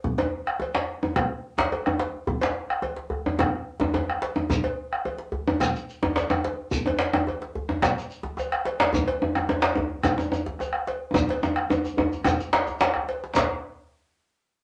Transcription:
0.04 bombo low medium
0.04 djembe tone medium
0.04 djembe bass medium
0.18 cowbell medium
0.18 djembe slap medium
0.18 djembe tone medium
0.47 bombo rim medium
0.60 cowbell medium
0.60 djembe slap soft
0.60 djembe tone medium
0.75 djembe slap medium
1.03 djembe tone medium
1.16 bombo rim loud
1.16 bombo low loud
1.16 cowbell medium
1.16 djembe slap medium
1.16 djembe tone medium
1.58 djembe slap medium
1.58 djembe slap loud
1.58 djembe bass medium
1.72 bombo rim soft
1.72 cowbell medium
1.72 djembe tone medium
1.86 bombo rim medium
1.86 djembe tone medium
1.99 cowbell medium
1.99 djembe slap medium
2.27 bombo rim soft
2.27 bombo low loud
2.27 djembe tone loud
2.27 djembe bass loud
2.41 cowbell medium
2.41 djembe slap medium
2.70 bombo rim medium
2.82 bombo rim soft
2.82 cowbell medium
2.82 djembe slap soft
2.82 djembe tone medium
2.96 djembe slap medium
3.10 bombo rim soft
3.10 djembe bass medium
3.26 djembe tone medium
3.39 bombo rim loud
3.39 bombo low loud
3.39 cowbell medium
3.39 djembe slap medium
3.39 djembe tone medium
3.53 bombo rim soft
3.53 djembe slap soft
3.80 bombo rim soft
3.80 djembe slap medium
3.80 djembe tone loud
3.80 djembe bass medium
3.94 cowbell medium
3.94 djembe tone medium
4.10 bombo rim medium
4.22 bombo rim soft
4.22 cowbell medium
4.22 djembe slap medium
4.36 djembe tone medium
4.50 bombo low medium
4.50 djembe tone medium
4.50 djembe bass medium
4.50 shekere medium
4.64 cowbell medium
4.64 djembe slap medium
4.93 bombo rim medium
5.05 cowbell medium
5.05 djembe slap soft
5.05 djembe tone medium
5.18 djembe slap medium
5.32 djembe bass medium
5.48 djembe tone loud
5.60 bombo rim loud
5.60 bombo low loud
5.60 cowbell medium
5.60 djembe slap medium
5.60 djembe tone medium
5.60 shekere medium
5.76 shekere soft
5.90 shekere soft
6.03 djembe slap medium
6.03 djembe tone loud
6.03 djembe bass medium
6.16 bombo rim soft
6.16 cowbell soft
6.16 djembe slap medium
6.16 djembe tone medium
6.16 shekere soft
6.30 bombo rim medium
6.30 djembe tone loud
6.44 cowbell medium
6.44 djembe slap medium
6.71 bombo low loud
6.71 djembe tone medium
6.71 djembe bass medium
6.71 shekere medium
6.86 cowbell medium
6.86 djembe slap medium
6.86 djembe tone medium
6.99 djembe slap medium
7.13 bombo rim medium
7.13 djembe tone loud
7.27 cowbell medium
7.27 djembe slap soft
7.27 djembe tone medium
7.42 djembe slap medium
7.55 djembe bass medium
7.69 djembe tone medium
7.82 bombo rim loud
7.82 bombo low loud
7.82 cowbell medium
7.82 djembe slap medium
7.82 djembe tone medium
7.82 shekere medium
7.98 shekere soft
8.11 shekere soft
8.23 djembe slap medium
8.23 djembe bass medium
8.37 bombo rim soft
8.37 cowbell medium
8.37 djembe tone medium
8.37 shekere soft
8.52 bombo rim medium
8.65 cowbell medium
8.65 djembe slap medium
8.80 djembe slap loud
8.93 bombo low loud
8.93 djembe tone loud
8.93 djembe bass medium
8.93 shekere medium
8.94 djembe tone medium
9.08 cowbell medium
9.08 djembe slap medium
9.22 djembe tone medium
9.35 bombo rim medium
9.35 djembe tone medium
9.49 cowbell medium
9.49 djembe slap soft
9.49 djembe tone medium
9.62 djembe slap loud
9.64 djembe slap medium
9.75 djembe tone medium
9.75 djembe bass medium
10.03 bombo rim loud
10.03 bombo low loud
10.03 cowbell medium
10.03 djembe slap medium
10.03 djembe tone medium
10.03 shekere medium
10.18 djembe tone medium
10.18 shekere soft
10.32 djembe tone medium
10.32 shekere soft
10.46 djembe slap medium
10.46 djembe bass medium
10.59 bombo rim soft
10.59 cowbell medium
10.59 djembe tone medium
10.59 shekere soft
10.73 bombo rim medium
10.87 cowbell medium
10.87 djembe slap medium
11.14 bombo low loud
11.14 djembe tone loud
11.14 djembe tone medium
11.14 djembe bass medium
11.14 shekere medium
11.28 bombo rim soft
11.28 cowbell medium
11.28 djembe slap medium
11.42 djembe slap soft
11.42 djembe tone loud
11.42 shekere soft
11.56 bombo rim medium
11.56 djembe slap soft
11.70 cowbell medium
11.70 djembe slap soft
11.70 djembe tone medium
11.70 djembe tone loud
11.70 shekere soft
11.85 djembe slap medium
11.85 shekere soft
11.97 djembe tone loud
11.97 djembe bass medium
12.12 shekere soft
12.24 bombo rim loud
12.24 bombo low loud
12.24 cowbell medium
12.24 djembe slap medium
12.24 djembe tone loud
12.24 djembe tone medium
12.24 shekere medium
12.40 djembe slap soft
12.40 shekere soft
12.53 bombo rim soft
12.53 djembe slap loud
12.67 djembe bass medium
12.67 shekere soft
12.80 cowbell medium
12.80 djembe slap loud
12.80 djembe bass soft
12.80 shekere soft
12.94 bombo rim medium
12.94 djembe bass medium
13.09 cowbell medium
13.09 djembe slap medium
13.24 djembe slap medium
13.35 bombo low medium
13.35 cowbell medium
13.35 djembe slap loud
13.35 djembe bass medium
13.35 shekere medium

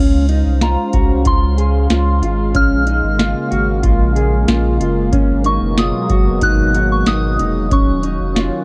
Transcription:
0.00 0.43 C#2 loud
0.00 7.68 G#3 medium
0.00 0.29 C#4 medium
0.00 2.53 C#4 medium
0.00 2.53 C5 medium
0.00 5.09 F5 medium
0.29 0.62 D#4 medium
0.29 closed hi-hat soft
0.46 0.76 C2 medium
0.61 0.93 F4 medium
0.61 1.29 A#5 medium
0.61 snare medium
0.61 closed hi-hat medium
0.93 1.25 C2 medium
0.93 1.25 F#4 medium
0.93 kick medium
0.93 closed hi-hat soft
1.25 1.87 C#2 loud
1.25 1.57 F4 medium
1.25 2.20 C6 medium
1.25 kick medium
1.25 closed hi-hat medium
1.58 1.90 G#4 medium
1.58 closed hi-hat soft
1.90 2.21 C#2 medium
1.90 2.21 F4 medium
1.90 snare medium
1.90 closed hi-hat medium
2.22 2.54 G#1 medium
2.22 2.55 F4 medium
2.22 closed hi-hat soft
2.54 3.01 A#1 medium
2.54 5.11 C#3 medium
2.54 7.67 A#3 medium
2.54 2.86 C#4 medium
2.54 3.81 F6 loud
2.54 kick medium
2.54 closed hi-hat medium
2.87 3.19 D#4 medium
2.87 closed hi-hat soft
3.04 3.34 G#1 medium
3.19 3.51 F4 medium
3.19 snare medium
3.19 closed hi-hat medium
3.51 3.83 G#1 medium
3.51 3.82 F#4 medium
3.51 closed hi-hat soft
3.83 4.45 A#1 loud
3.83 4.15 F4 medium
3.83 kick medium
3.83 closed hi-hat medium
4.16 4.47 G#4 medium
4.16 closed hi-hat soft
4.48 4.79 A#1 medium
4.48 4.79 F4 medium
4.48 snare medium
4.48 closed hi-hat medium
4.80 5.12 F#1 medium
4.80 5.13 F4 medium
4.80 closed hi-hat soft
5.12 5.59 G#1 medium
5.12 7.69 B2 medium
5.12 7.69 F#3 medium
5.12 5.45 C#4 medium
5.12 kick loud
5.12 closed hi-hat medium
5.44 5.78 D#4 medium
5.44 5.79 C#6 medium
5.44 closed hi-hat soft
5.62 5.92 F#1 medium
5.77 6.09 F4 medium
5.77 6.45 D#6 medium
5.77 snare medium
5.77 closed hi-hat medium
6.10 6.41 F#1 medium
6.10 6.42 F#4 medium
6.10 kick medium
6.10 closed hi-hat soft
6.41 7.04 G#1 loud
6.41 6.75 D#4 medium
6.41 6.93 F#6 medium
6.41 kick medium
6.41 closed hi-hat medium
6.74 7.07 F#4 medium
6.74 closed hi-hat soft
6.92 7.06 C#6 medium
7.06 7.38 G#1 medium
7.06 7.38 D#4 medium
7.06 7.74 D#6 medium
7.06 snare medium
7.06 closed hi-hat medium
7.39 7.70 F1 medium
7.39 7.71 D#4 medium
7.39 closed hi-hat soft
7.71 8.17 D#1 medium
7.71 8.64 D#3 medium
7.71 8.64 F#3 medium
7.71 8.03 C#4 medium
7.71 8.64 C#4 medium
7.71 8.64 F5 medium
7.71 8.33 C#6 medium
7.71 kick medium
7.71 closed hi-hat medium
8.03 8.36 D#4 medium
8.03 closed hi-hat soft
8.20 8.50 F1 medium
8.35 8.64 F4 medium
8.35 snare medium
8.35 closed hi-hat medium

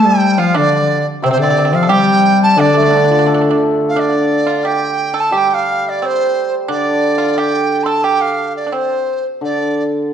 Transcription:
0.00 0.55 C3 medium
0.00 0.35 A4 medium
0.06 0.40 G3 medium
0.06 0.41 G5 medium
0.38 0.59 F3 medium
0.38 0.54 F4 medium
0.38 0.58 F5 medium
0.54 1.08 D3 medium
0.54 1.02 D4 medium
0.54 1.07 D5 loud
1.22 2.59 C3 medium
1.22 1.32 C3 medium
1.22 1.30 C4 medium
1.22 1.28 C5 loud
1.31 1.41 C3 medium
1.31 1.36 C4 medium
1.31 1.40 C5 loud
1.37 1.76 D3 medium
1.37 1.42 C4 medium
1.37 1.77 D5 medium
1.44 1.49 C4 medium
1.50 1.57 C4 medium
1.58 1.64 C4 medium
1.65 1.72 C4 medium
1.73 1.92 F3 medium
1.73 1.81 C4 medium
1.73 1.93 F5 medium
1.83 1.89 A4 medium
1.89 2.59 G3 loud
1.89 2.54 G4 loud
1.89 2.42 G5 loud
2.43 2.61 A5 loud
2.56 3.94 D3 medium
2.56 3.61 D3 medium
2.56 2.64 D4 medium
2.56 3.62 D5 loud
2.65 2.73 D4 medium
2.74 4.14 A3 medium
2.74 2.81 D4 medium
2.82 2.89 D4 soft
2.90 2.96 D4 medium
2.90 4.31 D4 medium
2.97 3.03 D4 medium
3.04 3.10 D4 medium
3.10 3.18 D4 soft
3.10 4.49 F4 soft
3.19 3.25 D4 medium
3.26 3.33 D4 soft
3.26 4.66 A4 medium
3.34 3.40 D4 medium
3.41 3.48 D4 medium
3.50 3.57 D4 medium
3.89 4.01 F5 medium
3.95 6.01 D3 soft
3.95 4.45 D4 medium
3.99 4.69 D5 medium
4.47 4.64 F4 medium
4.65 5.13 G4 medium
4.65 5.22 G5 medium
5.14 5.31 A4 medium
5.20 5.39 A5 medium
5.31 7.35 G3 medium
5.31 5.97 G4 medium
5.37 5.56 G5 medium
5.54 5.91 F5 medium
5.89 6.07 D5 medium
6.02 6.49 C4 medium
6.02 6.54 C5 medium
6.68 8.74 D3 medium
6.68 7.16 D4 medium
6.68 7.40 D5 medium
7.18 7.34 F4 medium
7.38 7.85 G4 medium
7.38 7.85 G5 medium
7.84 8.03 A4 medium
7.84 7.89 C6 medium
7.88 8.05 A5 medium
8.04 8.62 G4 medium
8.04 8.23 G5 medium
8.21 8.56 F5 medium
8.57 8.74 D5 medium
8.67 8.72 D4 soft
8.72 9.22 C4 soft
8.72 9.26 C5 medium
9.41 10.13 D3 soft
9.41 9.84 D5 medium

